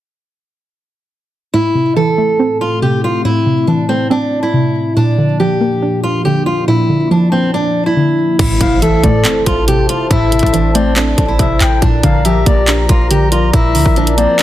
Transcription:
1.54 4.93 A2 medium
1.54 2.61 A2 loud
1.54 4.93 A3 medium
1.54 4.93 C4 medium
1.54 4.93 E4 medium
1.54 1.94 E4 loud
1.75 2.81 C3 medium
1.96 3.03 E3 loud
1.96 2.57 A4 medium
2.18 3.25 A3 medium
2.39 3.46 C4 loud
2.61 2.80 F4 medium
2.82 3.45 C3 medium
2.82 3.01 G4 medium
3.04 3.23 F4 medium
3.25 4.32 A2 loud
3.25 3.65 E4 medium
3.46 4.52 C3 medium
3.67 4.75 E3 medium
3.67 3.86 D4 medium
3.89 4.96 A3 medium
3.89 4.08 C4 medium
4.10 4.96 C4 loud
4.10 4.41 D4 medium
4.43 4.93 E4 medium
4.53 4.96 C3 medium
4.96 6.04 A#2 loud
4.96 8.36 A#2 medium
4.96 8.36 F3 medium
4.96 8.36 A#3 medium
4.96 8.36 D4 medium
4.96 5.37 D4 medium
5.18 6.24 D3 medium
5.40 6.47 F3 medium
5.40 6.00 G4 medium
5.61 6.68 A#3 medium
5.82 6.89 D4 medium
6.04 6.22 F4 medium
6.25 6.88 D3 medium
6.25 6.44 G4 medium
6.46 6.65 F4 medium
6.68 7.75 A#2 loud
6.68 7.08 E4 medium
6.89 7.95 D3 medium
7.11 8.18 F3 medium
7.11 7.30 D4 medium
7.32 8.39 A#3 medium
7.32 7.51 C4 medium
7.54 8.39 D4 medium
7.54 7.84 D4 medium
7.86 8.36 E4 medium
7.96 8.39 D3 medium
8.39 8.60 A1 loud
8.39 9.46 A2 loud
8.39 8.80 E4 loud
8.39 11.79 E4 medium
8.39 11.79 A4 medium
8.39 11.79 C5 medium
8.39 11.79 A5 medium
8.39 kick loud
8.39 closed hi-hat medium
8.39 crash loud
8.39 impact medium
8.61 9.02 A1 loud
8.61 9.67 C3 medium
8.61 8.81 F5 medium
8.61 kick medium
8.61 closed hi-hat medium
8.82 9.89 E3 loud
8.82 9.43 A4 medium
8.82 9.02 E5 loud
8.82 closed hi-hat medium
9.04 9.24 A2 loud
9.04 10.11 A3 loud
9.04 9.24 D5 medium
9.04 kick medium
9.04 closed hi-hat medium
9.25 10.32 C4 loud
9.25 clap loud
9.25 closed hi-hat medium
9.46 9.88 A1 loud
9.46 9.66 F4 medium
9.46 kick loud
9.46 closed hi-hat medium
9.68 10.31 C3 medium
9.68 9.87 G4 medium
9.68 closed hi-hat medium
9.89 10.08 F4 medium
9.89 closed hi-hat medium
10.10 10.42 A1 loud
10.10 11.18 A2 loud
10.10 10.51 E4 medium
10.10 10.71 E5 loud
10.10 kick loud
10.10 closed hi-hat medium
10.32 11.38 C3 medium
10.32 closed hi-hat medium
10.32 open hi-hat medium
10.39 11.15 A1 loud
10.39 kick medium
10.39 closed hi-hat medium
10.46 closed hi-hat soft
10.53 11.61 E3 medium
10.53 10.72 D4 medium
10.53 closed hi-hat medium
10.75 11.82 A3 medium
10.75 10.94 C4 medium
10.75 10.95 D5 medium
10.75 closed hi-hat medium
10.96 11.82 C4 loud
10.96 11.27 D4 medium
10.96 clap loud
10.96 closed hi-hat medium
11.18 11.38 A1 loud
11.18 kick loud
11.18 closed hi-hat medium
11.28 11.79 E4 medium
11.39 11.60 A1 loud
11.39 11.82 C3 medium
11.39 11.60 E5 medium
11.39 kick medium
11.39 closed hi-hat medium
11.61 11.81 A1 loud
11.61 11.81 G5 medium
11.61 clap medium
11.61 closed hi-hat medium
11.82 12.03 A#1 loud
11.82 12.89 A#2 loud
11.82 14.43 F3 medium
11.82 12.23 D4 loud
11.82 14.43 A#4 medium
11.82 14.43 D5 medium
11.82 14.43 A#5 loud
11.82 kick loud
11.82 closed hi-hat medium
12.03 12.45 A#1 loud
12.03 13.10 D3 medium
12.03 12.24 F5 medium
12.03 kick medium
12.03 closed hi-hat medium
12.25 13.32 F3 medium
12.25 12.86 G4 medium
12.25 12.45 E5 medium
12.25 closed hi-hat medium
12.46 12.88 A#1 loud
12.46 13.54 A#3 medium
12.46 12.67 D5 medium
12.46 kick medium
12.46 closed hi-hat medium
12.68 13.75 D4 loud
12.68 clap loud
12.68 closed hi-hat medium
12.89 13.51 A#1 loud
12.89 13.08 F4 medium
12.89 kick loud
12.89 closed hi-hat medium
13.11 13.74 D3 medium
13.11 13.30 G4 medium
13.11 closed hi-hat medium
13.32 13.51 F4 medium
13.32 closed hi-hat medium
13.53 13.76 A#1 loud
13.53 14.43 A#2 loud
13.53 13.94 E4 medium
13.53 14.14 E5 loud
13.53 kick loud
13.53 closed hi-hat medium
13.75 13.85 D2 loud
13.75 14.43 D3 medium
13.75 open hi-hat medium
13.86 14.27 A#1 loud
13.86 kick medium
13.96 14.43 F3 medium
13.96 14.16 D4 medium
13.96 closed hi-hat soft
14.07 closed hi-hat medium
14.17 14.43 A#3 medium
14.17 14.37 C4 medium
14.17 14.43 D5 medium
14.17 closed hi-hat medium
14.39 14.43 D4 medium
14.39 clap loud
14.39 closed hi-hat medium

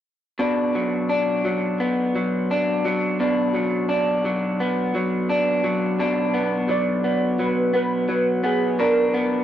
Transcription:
0.39 3.19 B2 medium
0.39 1.09 D4 medium
0.75 1.44 F#3 soft
1.09 2.50 D4 medium
1.45 2.15 F#3 soft
1.80 4.60 B3 medium
2.15 2.85 F#3 soft
2.51 3.20 D4 medium
2.85 3.54 F#3 medium
3.20 5.98 B2 medium
3.20 3.88 D4 medium
3.55 4.25 F#3 medium
3.89 5.29 D4 medium
4.25 4.94 F#3 medium
4.60 6.33 B3 medium
4.95 5.64 F#3 medium
5.29 6.00 D4 medium
5.64 6.68 F#3 medium
5.99 8.78 B2 medium
5.99 8.79 D4 medium
6.34 7.03 B3 medium
6.69 7.39 F#3 medium
6.69 7.36 D5 medium
7.04 7.72 B3 medium
7.39 8.08 F#3 medium
7.39 7.74 B4 medium
7.74 8.43 B3 medium
7.74 8.40 B4 medium
8.09 9.44 F#3 medium
8.44 9.13 B3 medium
8.44 8.77 G#4 medium
8.79 9.44 B2 medium
8.79 9.44 D4 medium
8.79 9.44 A#4 medium
9.14 9.44 B3 medium

